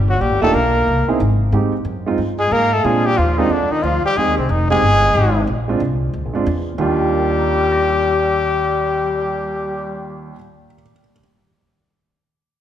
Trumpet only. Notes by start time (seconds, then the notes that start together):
0.09 F#4
0.21 G4
0.43 A4
0.54 A#4
2.40 G#4
2.52 A#4
2.73 A4
2.85 G#4
3.06 G4
3.17 F4
3.38 D#4
3.51 D4
3.71 D#4
3.83 F4
4.05 G4
4.17 G#4
4.38 C4
4.50 D#4
4.70 G#4
6.80 G4